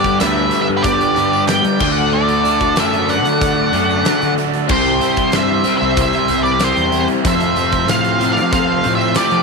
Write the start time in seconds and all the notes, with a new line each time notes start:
Already playing: G2 D3 G3 B3 D4 G4 B4 D5
0.04 kick, closed hi-hat
0.20 D2 G2 D3 G3 B3 D4 B4 E5, snare, closed hi-hat, tambourine
0.38 tambourine
0.51 B3, closed hi-hat, tambourine
0.61 B4 E5
0.69 G2, tambourine
0.77 G4 B4
0.83 G2 D3 G3 B3 D4 G4 D5, kick, closed hi-hat
0.87 B4
1.01 closed hi-hat, tambourine
1.16 G2 D3 G3, closed hi-hat, tambourine
1.33 tambourine
1.47 G3 B3 D4 B4 D5 G5, snare, closed hi-hat, tambourine
1.64 G3, closed hi-hat
1.79 D2 D3 A3 D4 F#4 A4 D5, kick, tambourine, crash
1.84 D4
1.92 D5 F#5
1.96 tambourine
2.12 D3 A3 D4 F#4 A4 D5, tambourine
2.29 closed hi-hat, tambourine
2.44 D4, snare, closed hi-hat, tambourine
2.60 kick, closed hi-hat
2.76 F#2 D3 F#3 A3 D4 F#4 A4 E5, snare, closed hi-hat, tambourine
2.94 closed hi-hat
3.08 A3 D5 F#5, closed hi-hat, tambourine
3.25 D3, closed hi-hat, tambourine
3.40 D3 A3 D4 F#4 A4, kick, closed hi-hat, tambourine
3.59 tambourine
3.72 F#2 D3 F#3 A3 D4, closed hi-hat, tambourine
3.90 tambourine
4.04 A3 D4 F#4 A4, snare, closed hi-hat, tambourine
4.22 D3, closed hi-hat
4.38 D4 F#4 A4, closed hi-hat, tambourine
4.54 closed hi-hat, tambourine
4.66 C2 C3 G3 C4 E4 C5, kick, crash
4.70 G3 C4 E4 G4 C5
4.86 snare
5.00 E4, closed hi-hat, tambourine
5.17 kick, closed hi-hat
5.32 G2 G3 C4 E5, snare, closed hi-hat, tambourine
5.36 E4 G4 C5
5.49 tambourine
5.64 G3 C4, closed hi-hat, tambourine
5.68 C3
5.78 C2 C5 E5, tambourine
5.96 C3 G3 C4 E4 G4, kick, closed hi-hat
6.01 C5 E5
6.13 closed hi-hat, tambourine
6.28 C2 G3, closed hi-hat, tambourine
6.43 B4 D5, tambourine
6.59 C3 G3 C4, snare, closed hi-hat, tambourine
6.63 E4 G4 C5
6.77 E2, closed hi-hat
6.92 E4, closed hi-hat, tambourine
7.08 closed hi-hat, tambourine
7.23 F2 C3 F3 A3 C4 F4 A4 C5, kick, closed hi-hat
7.28 C5 E5
7.40 snare, closed hi-hat
7.56 C4 A4, snare, closed hi-hat, tambourine
7.72 kick, closed hi-hat
7.88 A2 F3 C4 F4 A4 F5, snare, closed hi-hat, tambourine
7.94 C5
8.04 closed hi-hat
8.19 F2 C3 F3 A3, closed hi-hat, tambourine
8.32 D5 F5
8.37 F3, closed hi-hat, tambourine
8.52 F3 C4 F4 A4 C5 F5, kick, closed hi-hat
8.69 tambourine
8.84 A2 F3, closed hi-hat, tambourine
8.95 C5 E5
9.01 tambourine
9.15 F2 C3 F3 A3 C4 F4 G4 A4 D5, snare, closed hi-hat, tambourine
9.19 F3
9.31 F3, closed hi-hat, tambourine